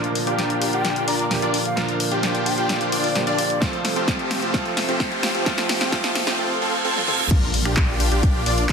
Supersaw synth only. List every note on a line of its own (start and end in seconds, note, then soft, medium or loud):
0.27 0.70 D4 medium
0.27 0.70 F4 medium
0.27 0.70 G4 loud
0.73 1.05 D4 medium
0.73 1.05 F4 medium
0.73 1.05 G4 loud
1.08 1.24 D4 loud
1.08 1.24 F4 medium
1.08 1.25 D5 loud
1.42 1.59 D4 loud
1.42 1.59 F4 loud
1.42 1.59 D5 loud
1.77 1.94 D4 medium
1.77 1.94 F4 medium
1.77 1.94 A#4 medium
2.12 2.55 D4 medium
2.12 2.55 F4 medium
2.12 2.55 G4 loud
2.58 2.90 D4 medium
2.58 2.90 F4 medium
2.58 2.90 G4 loud
2.92 3.09 D4 loud
2.92 3.09 F4 medium
2.92 3.09 D5 loud
3.27 3.44 D4 loud
3.27 3.44 F4 medium
3.27 3.44 D5 loud
3.62 3.78 C4 medium
3.62 3.78 F4 medium
3.62 3.78 A4 medium
3.96 4.40 C4 medium
3.96 4.40 F4 medium
3.96 4.40 G4 loud
4.42 4.52 C4 medium
4.42 4.52 F4 medium
4.42 4.52 G4 loud
4.54 4.71 C4 medium
4.54 4.71 F4 medium
4.54 4.71 A4 medium
4.88 5.32 C4 medium
4.88 5.32 F4 medium
4.88 5.32 G4 loud
5.35 5.44 C4 medium
5.35 5.44 F4 medium
5.35 5.44 G4 medium
5.46 5.63 C4 medium
5.46 5.63 F4 medium
5.46 5.63 A4 medium
5.81 5.91 C4 loud
5.81 5.91 F4 medium
5.81 5.91 G4 loud
5.92 6.09 C4 medium
5.92 6.09 F4 medium
5.92 6.09 A4 medium
6.27 6.37 C4 loud
6.27 6.37 F4 medium
6.27 6.37 G4 loud
6.38 6.55 C4 medium
6.38 6.55 F4 medium
6.38 6.55 A4 medium
6.62 6.78 C4 medium
6.62 6.78 F4 medium
6.62 6.78 A4 medium
6.85 7.01 C4 medium
6.85 7.01 F4 medium
6.85 7.01 A4 medium
7.08 7.25 C4 medium
7.08 7.25 F4 medium
7.08 7.25 A4 medium
7.31 7.48 D4 medium
7.31 7.48 F4 medium
7.31 7.48 A#4 medium
7.65 8.09 D4 loud
7.65 8.09 F4 medium
7.65 8.09 G4 loud
8.12 8.43 D4 medium
8.12 8.43 F4 medium
8.12 8.43 G4 loud
8.46 8.63 D4 loud
8.46 8.63 F4 medium
8.46 8.63 D5 loud